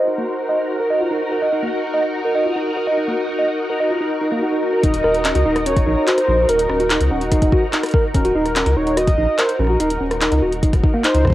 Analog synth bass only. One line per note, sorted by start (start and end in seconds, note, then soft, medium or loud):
4.83 5.01 D#1 loud
5.04 5.32 D#1 medium
5.35 5.44 C#2 medium
5.45 5.84 D#1 medium
5.87 5.95 A#1 medium
6.28 6.45 A#1 loud
6.49 6.66 D#1 loud
6.70 6.98 D#1 medium
7.01 7.09 C#2 medium
7.11 7.50 D#1 medium
8.14 8.32 D#1 loud
8.35 8.63 D#1 medium
8.66 8.75 C#2 medium
8.77 9.15 D#1 medium
9.18 9.27 A#1 medium
9.59 9.76 A#1 loud
9.80 9.97 D#1 loud
10.01 10.29 D#1 medium
10.32 10.40 C#2 medium
10.42 10.81 D#1 medium
11.14 11.26 C#2 medium
11.25 11.33 A#1 medium